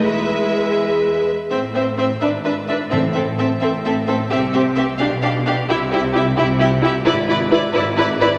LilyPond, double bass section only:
\new Staff \with { instrumentName = "Double bass section" } { \clef bass \time 6/8 \key e \major \tempo 4. = 86 e,2~ e,8 r8 | \key a \minor a,,4. gis,,4. | a,,4. a,,4. | c,4. b,,4. |
c,4. c,4. | \key e \mixolydian gis,,4. gis,,4. | }